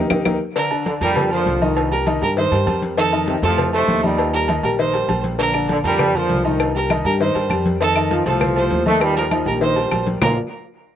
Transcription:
0.10 upright bass D#2, grand piano D#4 G4 A#4, cowbell, high conga, high timbale, claves
0.25 upright bass D#2, grand piano D#4 G4 A#4, cowbell, high conga, high timbale, claves
0.56 grand piano D3 D4 D5, fiddle A#4, cowbell, high conga, low agogo
0.71 grand piano D3 D4 D5, high conga, low agogo
0.86 trombone section D3, cowbell, high conga, low agogo
1.01 upright bass F2, trombone section A#2 D3 G3, grand piano F3 F4 A#4, fiddle A#4, cowbell, high conga, low agogo
1.16 cowbell, high conga, low conga, low agogo
1.31 trombone section A#2 D3 F3, grand piano F3 F4 A#4, fiddle C5, high conga, low agogo
1.46 upright bass C2, cowbell, high conga
1.61 trombone section G2 A#2 D#3, grand piano D#3 D#4 D#5, high conga, low agogo
1.77 cowbell, high conga, low agogo
1.92 grand piano G3 G4 A#4, fiddle A#4, high conga, low agogo
2.07 grand piano D#3 D#4 D#5, cowbell, high conga, low agogo
2.22 upright bass G2, grand piano G3 G4 A#4, fiddle A#4, high conga, low agogo
2.37 grand piano D#3 D#4 D#5, fiddle C5, cowbell, high conga
2.51 upright bass G2, grand piano G3 G4 A#4, cowbell, high conga, low agogo
2.67 upright bass F2, grand piano G3 G4 A#4, cowbell, high conga, low agogo
2.82 cowbell, high conga
2.97 grand piano D#3 D#4 D#5, fiddle A4, cowbell, high conga, low agogo
3.12 grand piano D#3 D#4 D#5, low agogo
3.28 trombone section C3, cowbell, high conga, low agogo
3.42 upright bass F2, trombone section A2 C3 F3, grand piano A3 A4 C5, fiddle A4, cowbell, high conga, low agogo
3.58 cowbell, high conga, low conga, low agogo
3.73 trombone section C3 D#3 A3, grand piano A3 A4 C5, fiddle C5, high conga, low agogo
3.88 upright bass D#2, cowbell, high conga
4.03 trombone section A#2 D#3 G3, grand piano D#3 D#4 D#5, high conga, low agogo
4.18 cowbell, low agogo
4.33 grand piano G3 G4 A#4, fiddle A#4, high conga, low agogo
4.48 grand piano D#3 D#4 D#5, cowbell, high conga, low agogo
4.63 upright bass A#1, grand piano G3 G4 A#4, fiddle A#4, high conga, low agogo
4.79 grand piano D#3 D#4 D#5, fiddle C5, cowbell, high conga
4.93 grand piano G3 G4 A#4, cowbell, high conga, low agogo
5.08 upright bass A#1, grand piano G3 G4 A#4, cowbell, high conga, low agogo
5.24 cowbell, high conga
5.39 grand piano D3 D4 D5, fiddle A#4, cowbell, low agogo
5.54 grand piano D3 D4 D5, high conga, low agogo, claves
5.69 trombone section D3, cowbell, high conga, low agogo
5.84 upright bass F2, trombone section A#2 D3 G3, grand piano F3 F4 A#4, fiddle A#4, cowbell, high conga, low agogo
5.99 cowbell, high conga, low conga, low agogo, claves
6.15 trombone section A#2 D3 F3, grand piano F3 F4 A#4, fiddle C5, high conga, low conga, low agogo
6.29 upright bass C2, cowbell, high conga
6.45 trombone section G2 A#2 D#3, grand piano D#3 D#4 D#5, high conga, low agogo
6.60 cowbell, low agogo, claves
6.75 grand piano G3 G4 A#4, fiddle A#4, high conga, low agogo
6.90 grand piano D#3 D#4 D#5, cowbell, high conga, low agogo, claves
7.04 upright bass G2, grand piano G3 G4 A#4, fiddle A#4, high conga, low agogo
7.20 grand piano D#3 D#4 D#5, fiddle C5, cowbell, high conga
7.35 upright bass G2, grand piano G3 G4 A#4, cowbell, high conga, low agogo
7.49 upright bass F2, grand piano G3 G4 A#4, cowbell, high conga, low agogo, claves
7.66 cowbell, high conga
7.81 grand piano D#3 D#4 D#5, fiddle A4, cowbell, high conga, low agogo
7.96 grand piano D#3 D#4 D#5, high conga, low agogo, claves
8.11 trombone section F3, cowbell, high conga, low agogo
8.26 upright bass C2, trombone section A2 C3 F3, grand piano A3 A4 C5, fiddle A4, cowbell, high conga, low agogo
8.41 cowbell, high conga, low conga, low agogo, claves
8.56 grand piano A3 A4 C5, fiddle C5, high conga, low agogo
8.70 upright bass D#2, cowbell, high conga
8.86 grand piano D#3 D#4 D#5, trombone section A3, high conga, low agogo
9.01 trombone section A#2 D#3 G3, cowbell, low agogo, claves
9.16 trombone section F3, grand piano G3 G4 A#4, fiddle A#4, high conga, low agogo
9.31 grand piano D#3 D#4 D#5, trombone section F3, cowbell, high conga, low agogo, claves
9.46 upright bass A#1, trombone section G2 A#2 D#3, grand piano G3 G4 A#4, fiddle A#4, high conga, low agogo
9.61 grand piano D#3 D#4 D#5, fiddle C5, cowbell, high conga
9.76 grand piano G3 G4 A#4, cowbell, high conga, low agogo
9.91 upright bass A#1, grand piano G3 G4 A#4, cowbell, high conga, low timbale, low agogo, claves
10.06 cowbell, high conga
10.21 upright bass A#1, trombone section A#2, grand piano A#3 F4 A#4 D5 F5 A#5, fiddle A#4, low bongo, low conga, low timbale, claves

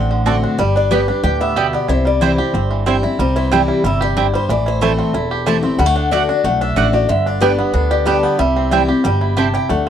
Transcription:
Already playing: upright bass A1, steel-string acoustic guitar A2 F#5, five-string banjo C4 D4
0.11 five-string banjo D3
0.26 steel-string acoustic guitar D3 A3 C4 F#4, mandolin C4 F#4 D5 A5, five-string banjo C4
0.44 five-string banjo D4
0.59 upright bass G1, steel-string acoustic guitar G2 D5, five-string banjo G3
0.76 five-string banjo D4, steel-string acoustic guitar D5
0.91 steel-string acoustic guitar G3 B3 D4 G4 B4, mandolin B3 G4 D5 G5, five-string banjo G4
1.08 five-string banjo D4, steel-string acoustic guitar D4 G4
1.23 upright bass D2, steel-string acoustic guitar A2 G5, five-string banjo G4
1.41 five-string banjo B3, steel-string acoustic guitar E5
1.56 steel-string acoustic guitar B2, mandolin B3 G4 D5 G5, five-string banjo G4
1.73 five-string banjo B3, steel-string acoustic guitar D5
1.88 upright bass C2, steel-string acoustic guitar C3 C5, five-string banjo E4
2.05 five-string banjo G3, steel-string acoustic guitar D5
2.21 steel-string acoustic guitar E3 G3 C4 E4 C5, mandolin C4 E4 C5 G5, five-string banjo E4
2.38 steel-string acoustic guitar C4 E4, five-string banjo G4
2.54 upright bass G1, steel-string acoustic guitar G2, five-string banjo C4
2.71 five-string banjo E3
2.86 steel-string acoustic guitar E3 G3 C4 E4, mandolin C4 E4 C5 G5, five-string banjo C4
3.03 steel-string acoustic guitar C4 E4, five-string banjo E4
3.19 upright bass C2, steel-string acoustic guitar C3 C5, five-string banjo G3
3.36 five-string banjo E4, steel-string acoustic guitar C5
3.51 steel-string acoustic guitar E3 G3 C4 E4 G4, five-string banjo G3, mandolin C4 E4 C5 G5
3.68 five-string banjo E4
3.84 upright bass G1, steel-string acoustic guitar C3 E5, five-string banjo G3
4.01 five-string banjo G4, steel-string acoustic guitar D5
4.17 steel-string acoustic guitar G2, mandolin C4 E4 C5 G5, five-string banjo E4
4.34 five-string banjo G3, steel-string acoustic guitar C5
4.49 upright bass A1, steel-string acoustic guitar A2 D5, five-string banjo E3
4.66 five-string banjo E4, steel-string acoustic guitar C5
4.81 steel-string acoustic guitar E3 A3 C4 E4 A4, mandolin A3 E4 C5 A5, five-string banjo A3
4.99 five-string banjo C4
5.14 upright bass E1, steel-string acoustic guitar E2, five-string banjo E4
5.31 five-string banjo G4
5.46 steel-string acoustic guitar E3 A3 C4 E4, mandolin A3 E4 C5 A5, five-string banjo A3
5.63 five-string banjo C4, steel-string acoustic guitar C4 E4
5.78 upright bass D2, steel-string acoustic guitar D3 F#5, five-string banjo G3
5.86 five-string banjo A3
5.96 five-string banjo D4, steel-string acoustic guitar F#5
6.11 steel-string acoustic guitar D3 A3 D4 F#4 D5, mandolin A3 F#4 D5 F#5, five-string banjo A3
6.29 five-string banjo D4, steel-string acoustic guitar D4 F#4
6.44 upright bass B1, steel-string acoustic guitar A2 F#5, five-string banjo A3
6.61 five-string banjo D4, steel-string acoustic guitar E5
6.76 upright bass A1, steel-string acoustic guitar D3 A3 D4 F#4, mandolin A3 F#4 D5 F#5, five-string banjo D4
6.93 five-string banjo A3, steel-string acoustic guitar D4 F#4 D5
7.09 upright bass G1, steel-string acoustic guitar G2 E5, five-string banjo D3
7.26 five-string banjo D4, steel-string acoustic guitar D5
7.41 steel-string acoustic guitar G3 B3 D4 G4 B4, five-string banjo G3, mandolin B3 G4 D5 G5
7.58 five-string banjo B3, steel-string acoustic guitar D4 G4
7.74 upright bass D2, steel-string acoustic guitar D3, five-string banjo D4
7.91 five-string banjo G4, steel-string acoustic guitar D5
8.06 steel-string acoustic guitar G3 B3 D4 G4 A5, five-string banjo G3, mandolin B3 G4 D5 G5
8.23 five-string banjo B3, steel-string acoustic guitar G5
8.39 upright bass C2, steel-string acoustic guitar C3 E5, five-string banjo G3
8.56 five-string banjo C4
8.71 steel-string acoustic guitar E3 G3 C4 E4 G5, mandolin C4 E4 C5 G5, five-string banjo E4
8.88 steel-string acoustic guitar C4 E4, five-string banjo G4
9.04 upright bass G1, steel-string acoustic guitar B2 G5, five-string banjo G3
9.21 five-string banjo E4
9.37 steel-string acoustic guitar C3 A5, mandolin C4 E4 C5 G5, five-string banjo G4
9.54 five-string banjo E4, steel-string acoustic guitar G5
9.69 upright bass D2, steel-string acoustic guitar D3 F#5, five-string banjo A3

